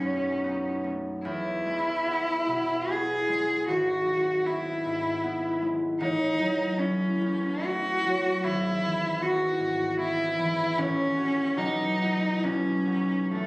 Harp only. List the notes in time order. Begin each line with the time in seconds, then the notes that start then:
Already playing: B1 A3 B3 D#4
0.01 F#2
0.44 B3 D#4
0.84 A3
1.25 E2
1.66 G#3
2.08 B3 E4
2.48 B2
2.88 B3 E4
3.29 G#3
3.68 G#1
4.06 G#3
4.44 B3 E4
4.85 G#2
5.23 B3 E4
5.62 G#3
6.00 A1
6.39 F#3
6.78 A3 E4
7.21 E2
7.65 A3 E4
8.06 F#3
8.44 G#1
8.82 E3
9.20 B3 E4
9.60 G#2
9.99 B3 E4
10.38 E3
10.78 A1
11.16 C#4 F#4
11.57 B1
12.01 B3 E4
12.43 B1
12.87 B3 D#4
13.32 E2